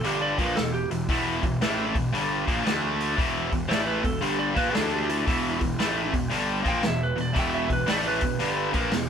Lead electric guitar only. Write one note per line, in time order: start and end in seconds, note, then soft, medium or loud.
0.05 0.22 G4 medium
0.22 0.38 D5 medium
0.38 0.56 B4 medium
0.56 0.73 A4 medium
0.74 0.90 G4 medium
0.90 1.93 E4 medium
3.69 3.87 D5 loud
3.87 4.05 B4 medium
4.04 4.22 A4 medium
4.22 4.39 G4 medium
4.39 4.57 D5 medium
4.57 4.75 B4 medium
4.75 4.93 A4 medium
4.93 5.10 G4 medium
5.09 6.11 E4 medium
6.68 6.84 G5 loud
6.87 7.03 E5 medium
7.03 7.21 B4 medium
7.21 7.37 D5 medium
7.39 7.55 G5 medium
7.54 7.71 E5 medium
7.73 7.89 B4 medium
7.89 8.06 D5 medium
8.07 9.08 B4 loud